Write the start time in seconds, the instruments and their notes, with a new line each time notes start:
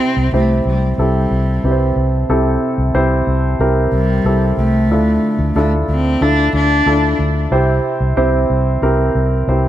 Already playing: grand piano C3 C4 E4 G4 C5, cello C4
0.17 fingered electric bass C2
0.33 fingered electric bass C2, cello A3, grand piano C4 E4 G4 C5
0.65 fingered electric bass C2, cello G3
0.98 fingered electric bass C2, cello G3, grand piano C4 E4 G4 A4
1.31 fingered electric bass C2
1.64 fingered electric bass C2, grand piano C4 E4 G4 B4
1.71 grand piano C5
1.96 fingered electric bass C2
2.29 fingered electric bass C2, grand piano C3 C4 E4 G4 A4
2.78 fingered electric bass C2
2.94 fingered electric bass C2, grand piano C4 E4 G4 C5
3.27 fingered electric bass C2
3.59 fingered electric bass C2, grand piano C4 E4 G4 A#4
3.92 fingered electric bass C2, cello G3
4.24 fingered electric bass C2, grand piano C4 E4 G4 A4
4.57 fingered electric bass C2, cello A3
4.90 fingered electric bass D2, grand piano D3 D4 E4 F4 A4
5.39 fingered electric bass D2
5.56 fingered electric bass D2, cello A3, grand piano D4 E4 F4 A4
5.88 fingered electric bass D2, cello C4
6.21 fingered electric bass D2, grand piano D4 E4 F4 A4, cello D4
6.53 fingered electric bass D2, cello D4
6.86 fingered electric bass D2, grand piano D4 E4 F4 A4
7.19 fingered electric bass D2
7.51 fingered electric bass C2, grand piano C3 C4 E4 G4 C5
8.00 fingered electric bass C2
8.17 fingered electric bass C2, grand piano C4 E4 G4 C5
8.50 fingered electric bass C2
8.82 fingered electric bass C2, grand piano C4 E4 G4 A#4
9.15 fingered electric bass C2
9.48 fingered electric bass C2, grand piano C4 E4 G4 C5